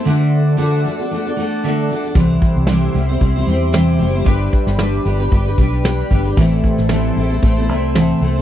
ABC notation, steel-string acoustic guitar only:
X:1
M:4/4
L:1/16
Q:"Swing 16ths" 1/4=114
K:G
V:1 name="Steel-string acoustic guitar"
[D,A,DFA]4 [D,A,DFA]2 [A,DFA] [DFA] [A,DFA] [DFA] [A,DFA]2 [D,A,DFA]2 [A,DFA] [DFA] | [C,E,G,CEc]4 [C,E,G,CEc]2 [G,CEc] [G,CEc] [G,CEc] [G,CEc] [G,CEc]2 [C,E,G,CEc]2 [G,CEc] [G,CEc] | [G,DGB]4 [G,DGB]2 [G,DGB] [DGB] [G,DGB] [DGB] [G,DGB]2 [G,DGB]2 [G,DGB] [DGB] | [A,,E,A,CEA]4 [A,,E,A,CEA]2 [A,CEA] [A,CEA] [A,CEA] [A,CEA] [A,CEA]2 [A,,E,A,CEA]2 [A,CEA] [A,CEA] |]